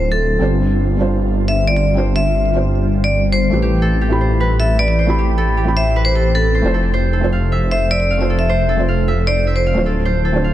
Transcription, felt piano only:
Already playing: A3 C4 D4 F4 C5
0.38 G3 C4 D4 F4 C5
0.97 G3 C4 D4 F4
1.01 C5
1.94 G3 C4 D4 F4 C5
2.52 G3 C4 D4 F4 C5
3.50 A3 C4 E4 G4 B4
4.08 A3 C4 E4 G4 B5
5.06 A3 C4 E4 G4
5.10 B5
5.64 A3 C4 E4 G4 B5
6.62 A3 C4 E4 F4
6.66 C5
7.20 A3 C4 F4 C5
8.17 A3 C4 F4
8.21 C5
8.76 A3 C4 F4
8.80 C5
9.73 A3 C4 D4 F4 C5
10.32 A3 C4 D4 F4 C5

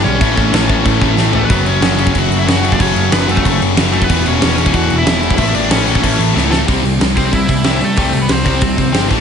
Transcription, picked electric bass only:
0.05 B1
0.21 A1
0.38 A1
0.54 A1
0.86 A1
1.18 A1
1.35 A1
1.50 F#1
1.65 F#1
1.82 F#1
2.15 F#1
2.31 F#1
2.47 F#1
2.80 F#1
2.96 F#1
3.13 F#1
3.45 F#1
3.61 F#1
3.78 F#1
4.10 E1
4.26 E1
4.43 E1
4.74 E1
4.92 E1
5.07 E1
5.38 A1
5.55 A1
5.71 A1
6.04 A1
6.19 A1
6.35 C#2
6.69 C2
6.84 C2
7.00 C2
7.17 C2
7.33 C2
7.49 C2
7.65 C2
7.81 C3
7.98 C2
8.13 C2
8.30 C2
8.46 C2
8.62 C2
8.78 C2
8.94 G1
9.11 A1

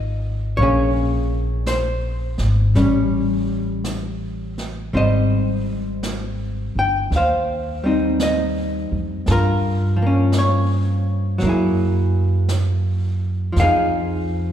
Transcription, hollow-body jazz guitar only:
Already playing: A#3 D#4 F4 D#5
0.57 A#3 C#5
0.62 C#4 G#4
1.67 C5
2.76 G3 C#4
4.93 G3 C4 C5 D#5
6.79 G5
7.16 C5 F5
7.84 G3 C4 D#4
8.23 D#5
9.28 F4 A4
9.32 A#4
9.96 F3
10.02 A#3
10.06 C#4
10.38 C#5
11.38 F#3
11.43 A#3 E4
11.49 G#4
13.52 F3
13.60 D#4 G#4 F5

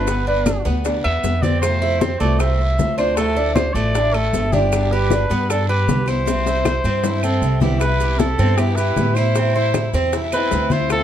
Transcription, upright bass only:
Already playing: G1
0.66 D2
1.05 E2
1.24 F2
2.21 C2
2.79 D2
3.74 A1
4.33 G1
5.30 G2
5.88 C2
6.84 G2
7.42 C2
8.39 G2
8.97 A2
9.93 E2
10.52 D2

